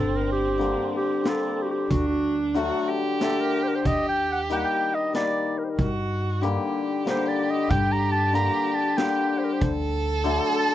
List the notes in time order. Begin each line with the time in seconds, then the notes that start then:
Already playing: G1 D3 G3 C4
0.00 A4
0.16 A#4
0.32 G4
0.58 D3 G3 A#3, closed hi-hat
0.96 G4
1.24 D3 G3 A#3, snare, closed hi-hat
1.28 A4
1.62 F#4 G4
1.71 G4
1.89 D2 D4 F#4, kick, closed hi-hat
2.08 F#4
2.54 D3 F#3 A3 F#4, closed hi-hat
2.88 G4
3.20 D3 A3 A4, snare, closed hi-hat
3.41 A#4
3.64 C5
3.68 A#4
3.75 C5
3.85 D#2 G4 D#5, kick, closed hi-hat
4.09 G5
4.32 F#5
4.49 D#3 G3 A#3 G5, closed hi-hat
4.55 F#5
4.64 G5
4.95 D#5
5.13 D#3 G3 A#3 D5, snare, closed hi-hat
5.59 A#4
5.65 C5
5.70 A#4
5.79 G2 F#4, kick, closed hi-hat
6.41 D3 G3 A#3 G4, closed hi-hat
7.05 D3 G3 A#3, snare, closed hi-hat
7.10 C5
7.28 D5
7.50 D#5
7.70 G2 G5, kick, closed hi-hat
7.92 A#5
8.12 A5
8.33 D3 G3 A#3 A#5, closed hi-hat
8.75 A5
8.97 D3 G3 A#3 G5, snare, closed hi-hat
9.39 C5
9.45 A#4
9.53 C5
9.61 D2 A4, kick, closed hi-hat
10.24 D3 F#3 A3, closed hi-hat
10.58 A5